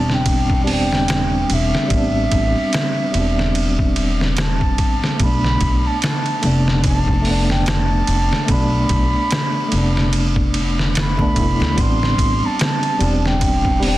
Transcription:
Already playing: upright bass E1, tine electric piano G3 B3 C4 D4, flute A5
0.10 flute G5, snare
0.26 kick, ride
0.50 kick
0.64 tine electric piano G3 B3, flute A5, open hi-hat
0.70 tine electric piano C4 D4, flute G5
0.93 snare
1.08 snare, ride
1.50 upright bass E1, flute E5, ride
1.75 snare
1.88 upright bass A1, tine electric piano G3 B3, kick, ride
1.94 tine electric piano C4 D4
2.32 upright bass A1, kick, ride
2.73 snare, ride
3.11 upright bass E1, tine electric piano G3 B3, ride
3.17 tine electric piano C4 D4
3.39 snare
3.55 ride
3.79 kick
3.96 ride
4.21 snare
4.37 flute A5, snare, ride
4.61 kick
4.78 kick, ride
5.04 snare
5.16 upright bass B1, tine electric piano A3, kick, ride
5.21 tine electric piano B3, flute B5
5.25 tine electric piano D4
5.44 snare
5.61 upright bass B1, kick, ride
5.86 flute A5
6.02 flute A5, snare, ride
6.26 ride
6.42 upright bass F1, tine electric piano A3 B3, ride
6.46 tine electric piano D4
6.68 snare
6.84 flute A5, kick, ride
7.08 kick
7.22 tine electric piano A3, open hi-hat
7.26 tine electric piano B3
7.31 tine electric piano D4
7.50 flute G5, snare
7.66 flute A5, snare, ride
8.07 upright bass F1, ride
8.33 snare
8.45 upright bass B1, tine electric piano A3, kick, ride
8.49 tine electric piano B3, flute B5
8.54 tine electric piano D4
8.89 upright bass B1, kick, ride
9.31 snare, ride
9.68 upright bass F1, tine electric piano A3, ride
9.73 tine electric piano B3
9.77 tine electric piano D4
9.97 snare
10.13 ride
10.36 kick
10.54 ride
10.79 snare
10.95 flute B5, snare, ride
11.17 upright bass D2, tine electric piano A3 B3, kick
11.22 tine electric piano D4
11.35 upright bass F1, tine electric piano A3 B3, kick, ride
11.39 tine electric piano E4
11.60 upright bass D2, snare
11.73 tine electric piano G3 B3
11.77 upright bass A1, tine electric piano C4, flute C6, kick, ride
11.82 tine electric piano D4
12.03 snare
12.18 upright bass A1, kick, ride
12.45 flute A5
12.59 flute A5, snare, ride
12.83 ride
12.99 upright bass E1, tine electric piano G3 B3 C4, ride
13.04 tine electric piano D4
13.26 flute G5, snare
13.41 kick, ride
13.65 kick
13.80 tine electric piano G3 B3, open hi-hat
13.84 tine electric piano C4, flute G5
13.88 tine electric piano D4

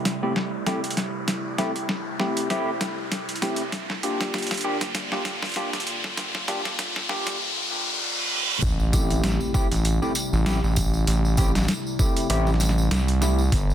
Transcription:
Already playing: ambient pad C3 G3 A3 E4, riser
0.05 snare, closed hi-hat
0.23 tine electric piano A3 C4 E4 G4
0.36 snare
0.67 tine electric piano A3 C4 E4 G4, snare, closed hi-hat
0.84 closed hi-hat
0.91 closed hi-hat
0.97 snare, closed hi-hat
1.28 snare, closed hi-hat
1.58 tine electric piano A3 C4 E4 G4, snare, closed hi-hat
1.76 closed hi-hat
1.89 snare
2.20 tine electric piano A3 C4 E4 G4, snare
2.37 closed hi-hat
2.50 tine electric piano A3 C4 E4 G4, snare, closed hi-hat
2.81 snare, closed hi-hat
3.12 snare, closed hi-hat
3.29 closed hi-hat
3.36 closed hi-hat
3.42 tine electric piano A3 C4 E4 G4, snare, closed hi-hat
3.45 closed hi-hat
3.56 closed hi-hat
3.72 ambient pad D3 G3 A#3 F4, snare, closed hi-hat
3.90 snare
4.03 tine electric piano A#3 D4 F4 G4, closed hi-hat
4.21 snare, closed hi-hat
4.34 snare, closed hi-hat
4.38 closed hi-hat
4.42 closed hi-hat
4.47 closed hi-hat
4.51 snare, closed hi-hat
4.54 closed hi-hat
4.57 closed hi-hat
4.61 tine electric piano A#3 D4 F4 G4, closed hi-hat
4.81 snare, closed hi-hat
4.95 snare, closed hi-hat
5.12 tine electric piano A#3 D4 F4 G4, snare
5.25 snare, closed hi-hat
5.43 snare, closed hi-hat
5.45 closed hi-hat
5.49 closed hi-hat
5.52 closed hi-hat
5.54 snare, closed hi-hat
5.56 tine electric piano A#3 D4 F4 G4, closed hi-hat
5.73 snare, closed hi-hat
5.80 closed hi-hat
5.87 closed hi-hat
6.04 snare
6.17 snare, closed hi-hat
6.35 snare
6.48 tine electric piano A#3 D4 F4 G4, snare, closed hi-hat
6.65 snare, closed hi-hat
6.79 snare, closed hi-hat
6.96 snare
7.09 tine electric piano A#3 D4 F4 G4, snare
7.27 snare, closed hi-hat
7.40 reverse cymbal
8.62 analog synth bass A1, ambient pad C3 G3 A3 E4, kick, closed hi-hat, tambourine, impact
8.80 tambourine
8.93 tine electric piano A3 C4 E4 G4, kick, closed hi-hat, tambourine
9.10 closed hi-hat, tambourine
9.24 analog synth bass A1, snare, closed hi-hat, tambourine
9.40 tambourine
9.54 tine electric piano A3 C4 E4 G4, kick, tambourine
9.72 analog synth bass A1, closed hi-hat, tambourine
9.85 closed hi-hat, tambourine
10.02 tine electric piano A3 C4 E4 G4, tambourine
10.15 closed hi-hat, tambourine
10.33 analog synth bass A1, tambourine
10.46 tine electric piano A3 C4 E4 G4, snare, closed hi-hat, tambourine
10.64 analog synth bass A1, tambourine
10.76 kick, closed hi-hat, tambourine
10.94 tambourine
11.07 analog synth bass A1, closed hi-hat, tambourine
11.25 tambourine
11.37 tine electric piano A3 C4 E4 G4, kick, closed hi-hat, tambourine
11.55 snare, closed hi-hat, tambourine
11.59 snare
11.62 snare
11.65 snare, tambourine
11.68 snare, closed hi-hat
11.73 snare
11.77 snare
11.82 snare
11.87 tambourine
11.99 tine electric piano A3 C4 E4 G4, kick, tambourine
12.17 closed hi-hat, tambourine
12.30 analog synth bass A1, tine electric piano A3 C4 E4 G4, closed hi-hat, tambourine
12.47 snare, tambourine
12.54 snare
12.60 snare, closed hi-hat, tambourine
12.69 snare
12.78 tambourine
12.91 analog synth bass C2, snare, closed hi-hat, tambourine
13.08 closed hi-hat, tambourine
13.22 tine electric piano A3 C4 E4 G4, snare, closed hi-hat, tambourine
13.38 tambourine
13.52 analog synth bass G1, ambient pad D3 A#3 F4, kick, closed hi-hat, tambourine
13.70 tambourine

